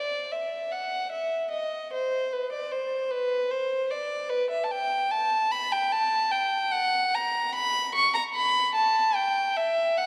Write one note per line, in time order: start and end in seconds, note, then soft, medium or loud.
0.00 0.33 D5 medium
0.32 0.72 E5 medium
0.72 1.12 F#5 medium
1.12 1.51 E5 medium
1.51 1.91 D#5 medium
1.93 2.32 C5 medium
2.33 2.53 B4 medium
2.52 2.72 D5 medium
2.72 3.11 C5 medium
3.11 3.51 B4 medium
3.51 3.90 C5 medium
3.91 4.31 D5 medium
4.30 4.50 B4 medium
4.50 4.63 E5 medium
4.64 4.71 A5 medium
4.72 5.12 G5 medium
5.11 5.51 A5 medium
5.51 5.72 B5 medium
5.72 5.92 G5 medium
5.93 6.33 A5 medium
6.32 6.73 G5 medium
6.72 7.14 F#5 medium
7.15 7.55 A#5 medium
7.55 7.94 B5 medium
7.95 8.14 C#6 medium
8.15 8.23 A#5 medium
8.35 8.74 B5 medium
8.75 9.15 A5 medium
9.16 9.57 G5 medium
9.57 9.98 E5 medium
9.98 10.06 F#5 medium